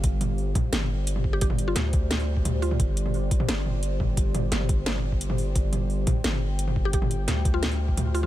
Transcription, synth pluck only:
X:1
M:4/4
L:1/16
Q:1/4=174
K:Cdor
V:1 name="Synth pluck"
z12 z3 G | G z2 F2 z8 z F2- | F2 z12 z2 | z16 |
z12 z3 G | G z6 F2 z4 z F F |]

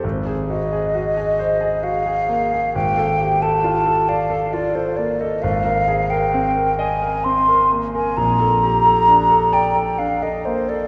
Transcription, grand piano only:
X:1
M:3/4
L:1/16
Q:1/4=66
K:Ablyd
V:1 name="Grand piano"
A,,, A _G A G A c A G A B, A | A,,, =A G A F A d A F A B, A | A,,, B A B C B e B C B B, B | B,,, =A G A D A d A D A B, A |]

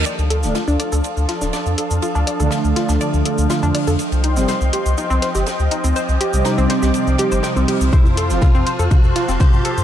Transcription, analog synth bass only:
X:1
M:4/4
L:1/16
Q:1/4=122
K:Dphr
V:1 name="Analog synth bass" clef=bass
z D,,2 D,,, z D,, z D,, z D,, z D,,, z F,, z F,, | z D,, z D,, z D,, z D,, z D,, z D,, z F,, z F,, | z C,,2 G,,, z C,, z C,, z C,, z G,,, z D,, z D,, | z C,, z C,, z C,, z C,, z C,, z G,,, z C,, z C,, |
z F,,2 F,,, z F,, z F,, z F,, z F,,, z G,, z G,, |]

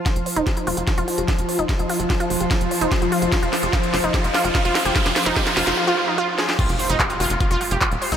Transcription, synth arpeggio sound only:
X:1
M:4/4
L:1/16
Q:1/4=147
K:Cphr
V:1 name="Synth arpeggio sound"
F z c E G F F F F F F G F z c E | G F F F F F F G F z c E G F F F | F F F G F z c E G F F F F F F G | F z c E G F F F F F F E F z A G |
F z c E G F F F F F F G F z c E |]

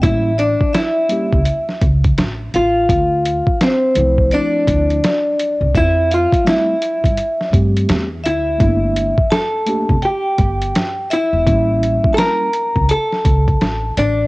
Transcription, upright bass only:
X:1
M:4/4
L:1/16
Q:"Swing 16ths" 1/4=84
K:Aphr
V:1 name="Upright bass" clef=bass
A,,,3 z4 ^C,, z2 C,,2 A,,,2 A,,,2 | D,,3 z3 C,,2 z2 D,,2 z3 C,, | F,,3 z4 G,, z2 G,,2 E,,2 D,,2 | G,,,3 z4 F,,, z2 G,,,2 z3 E,,, |
A,,,3 z4 ^C,, z2 C,,2 A,,,2 A,,,2 |]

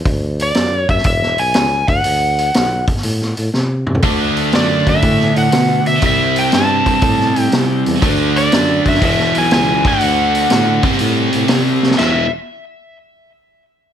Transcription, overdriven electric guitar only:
X:1
M:4/4
L:1/8
Q:"Swing" 1/4=121
K:Dlyd
V:1 name="Overdriven electric guitar" clef=bass
z8 | z8 | [D,A,D]8 | [=C,=G,=C]8 |
[D,A,D]4 [E,,B,,E,]3 [D,A,D]- | [D,A,D]3 [=C,=G,=C]4- [C,G,C] | [E,,B,,E,] z6 z |]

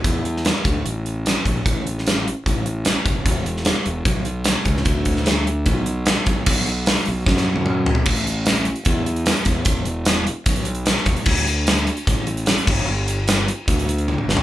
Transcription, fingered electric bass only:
X:1
M:4/4
L:1/16
Q:1/4=150
K:A
V:1 name="Fingered electric bass" clef=bass
E,,6 D,,2 A,,,6 ^A,,,2 | A,,,8 A,,,6 F,,,2 | E,,,6 E,,,2 B,,,6 C,,2 | D,,8 B,,,6 B,,,2 |
B,,,6 B,,,2 F,,8 | A,,,8 E,,6 E,,2 | E,,,8 B,,,6 E,,, z | D,,8 A,,,6 =G,,,2 |
=G,,,8 D,,6 G,,, z |]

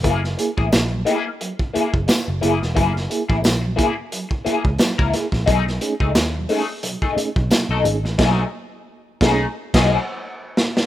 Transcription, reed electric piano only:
X:1
M:4/4
L:1/16
Q:"Swing 16ths" 1/4=88
K:F#mix
V:1 name="Reed electric piano"
F, z [A,EG] [EG] [EG] F, [A,EG] z F, z [A,EG] [EG] z2 [A,EG] z | F, z [A,EG] [EG] [EG] F, [A,EG] z F, z [A,EG] [EG] F, z [A,EG] [EG] | [B,,F,] z [=A,CDG] [DG] [DG] [B,,F,] [A,CDG] z [B,,F,] z [A,CDG] z [B,,F,] z [A,CDG] [DG] | [B,,F,]2 z4 [=A,CDG]2 z [B,,F,]2 z4 z |]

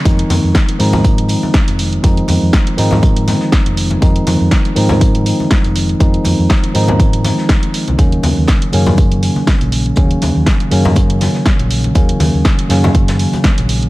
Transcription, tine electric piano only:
X:1
M:4/4
L:1/8
Q:"Swing 16ths" 1/4=121
K:Fphr
V:1 name="Tine electric piano" clef=bass
[E,F,A,CE]3 [E,F,A,CE]4- [E,F,A,CE] | [E,F,A,CE]3 [E,F,A,CE]4- [E,F,A,CE] | [E,F,A,CE]3 [E,F,A,CE]4- [E,F,A,CE] | [E,F,A,CE]3 [E,F,A,CE]4- [E,F,A,CE] |
[D,E,G,B,D]3 [D,E,G,B,D]4- [D,E,G,B,D] | [D,E,G,B,D]3 [D,E,G,B,D]4- [D,E,G,B,D] | [D,E,G,B,D]3 [D,E,G,B,D]4- [D,E,G,B,D] |]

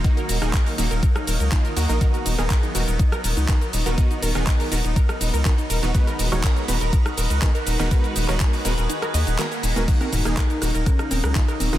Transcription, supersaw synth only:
X:1
M:4/4
L:1/16
Q:1/4=122
K:Abdor
V:1 name="Supersaw synth"
[E,B,EG]3 [E,B,EA]3 [E,B,EG] z4 z [E,B,EF]2 [B,EG] [B,EB] | [E,CEG]3 [E,CEA]3 [E,CEG] z4 z [E,CEG] z2 [E,CEG] | [E,CEG]3 [E,CEA]3 [E,CEG] z4 z [E,CEG] z2 [E,CEG] | [E,A,CEGc]3 [E,A,CEGd]3 [E,A,CEGc] z4 z [E,A,CEGB] z2 [E,A,CEGB] |
[A,CEGc]3 [E,A,CEGd]3 [E,A,CEGc] z4 z [E,A,CEGB] z2 [A,CEGB] | [E,B,EG]3 [E,B,EA]3 [E,B,EG] z4 z [E,B,EF] z2 [E,B,EF] |]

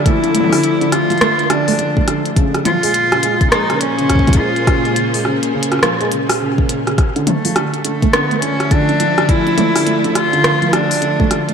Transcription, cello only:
X:1
M:4/4
L:1/8
Q:"Swing 16ths" 1/4=104
K:Bblyd
V:1 name="Cello"
E3 F2 D2 z | z F3 _E _D2 F- | F2 z6 | z A,2 A, =B, ^C D2 |
E3 F2 D2 z |]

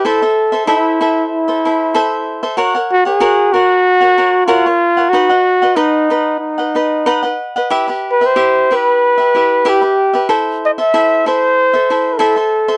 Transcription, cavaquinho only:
X:1
M:4/4
L:1/16
Q:1/4=94
K:Ador
V:1 name="Cavaquinho"
[EAce] [Ace]2 [Ace] [EAce]2 [EAce]3 [Ace] [EAce]2 [EAce]3 [Ace] | [F^A^cf] [Acf]2 [Acf] [FAcf]2 [FAcf]3 [Acf] [FAcf]2 [FAcf] [Ac]2 [Acf] | [^DB^df] [Bdf]2 [Bdf] [DBdf]2 [DBdf]3 [Bdf] [DBdf]2 [DBdf] [Bdf]2 [Bdf] | [EGBe] [GBe]2 [GBe] [EGe]2 [EGBe]3 [GBe] [EGBe]2 [EGBe] [GBe]2 [GBe] |
[EAce]3 [Ace] [EAce]2 [EAce]3 [Ace] [EAce]2 [EAce] [Ace]2 [Ace] |]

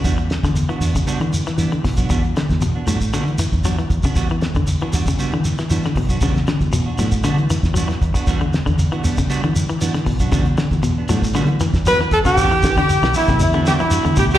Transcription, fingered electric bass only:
X:1
M:4/4
L:1/16
Q:1/4=117
K:Edor
V:1 name="Fingered electric bass" clef=bass
E,,3 E,,2 z E,,2 z E,2 z E,3 B,,, | E,,2 z E,,3 A,,3 E,2 E,,3 E,, z | E,,3 E,,2 z E,,2 z E,2 z E,3 B,,, | E,,2 z E,,3 A,,3 E,2 E,,3 E,, z |
E,,3 E,,2 z E,,2 z E,2 z E,3 B,,, | E,,2 z E,,3 A,,3 E,2 E,,3 E,, z | E,,2 E, E,, z B,,, z B,,, E,,4- E,, E,, D,,2 |]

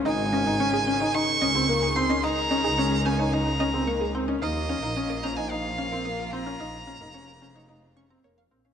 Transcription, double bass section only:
X:1
M:4/4
L:1/16
Q:1/4=110
K:Bbm
V:1 name="Double bass section" clef=bass
A,,,6 z4 D,,6 | z3 D,,12- D,, | E,,3 B,,,12- B,,, | B,,,3 F,,,8- F,,, F,,, z B,,, z |]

